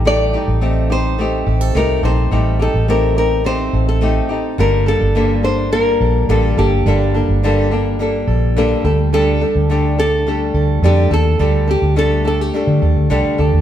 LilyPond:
<<
  \new Staff \with { instrumentName = "Nylon-string guitar" } { \time 4/4 \key g \minor \tempo 4 = 106 d''4. c''4. bes'8 c''8~ | c''8 a'8 bes'8 bes'8 c''8. a'8. r8 | bes'8 a'4 c''8 bes'4 a'8 g'8~ | g'4 r2. |
a'4. a'4. g'8 a'8~ | a'8 g'8 a'8 a'16 g'4.~ g'16 r8 | }
  \new Staff \with { instrumentName = "Nylon-string guitar" } { \time 4/4 \key g \minor <a c' ees' g'>8 <c' ees' g'>8 <a c' ees' g'>8 <c' ees' g'>8 <a c' ees' g'>4 <a c' ees' g'>8 <c' ees' g'>8 | <a c' ees' g'>8 <c' ees' g'>8 <a c' ees' g'>8 <c' ees' g'>8 <a c' ees' g'>4 <a c' ees' g'>8 <c' ees' g'>8 | <g, d g bes d' a'>8 <g bes d' a'>8 <g, d g bes d' a'>8 <g bes d' a'>8 <g bes d'>4 <g, d g bes d' a'>8 <g bes d' a'>8 | <g, d g bes d' a'>8 <g bes d' a'>8 <g, d g bes d' a'>8 <g bes d' a'>8 <g bes d' a'>4 <g, d g bes d' a'>8 <d' g' a'>8 |
<d g d' g' a'>8 <d' g' a'>8 <d g d' g' a'>8 <d' g' a'>8 <g d' g' a'>4 <d g d' g' a'>8 <d' g' a'>8 | <d g d' g' a'>8 <d' g' a'>8 <d g d' g' a'>8 <d' g' a'>8 <g d' g' a'>4 <d g d' g' a'>8 <d' g' a'>8 | }
  \new Staff \with { instrumentName = "Steel-string acoustic guitar" } { \time 4/4 \key g \minor <g a'>8 ees'8 c'8 ees'8 c'8 g'16 a'16 ees'8 a'8 | <g a'>8 ees'8 c'8 ees'8 c'8 a'8 ees'8 a'8 | <g a'>8 d'8 bes8 d'8 bes8 a'8 d'8 a'8 | <g a'>8 d'8 bes8 d'8 bes8 a'8 d'8 g8 |
<g a'>8 d'8 a8 d'8 a8 a'8 d'8 a'8 | <g a'>8 d'8 a8 d'8 a8 a'8 d'8 a'8 | }
  \new Staff \with { instrumentName = "Fingered electric bass" } { \clef bass \time 4/4 \key g \minor a,,8. a,,4.~ a,,16 a,,8 c,8 bes,,8 | a,,8. a,,4.~ a,,16 a,,4 r8 | g,,8. g,,4.~ g,,16 bes,,8 a,,8 g,,8 | g,,8. g,,4.~ g,,16 bes,,4 d,8~ |
d,8. d,4.~ d,16 d,8 f,8 ees,8 | d,8. d,4~ d,16 r16 d16 ees,16 d,16 c,16 r16 d,16 ees,16 | }
>>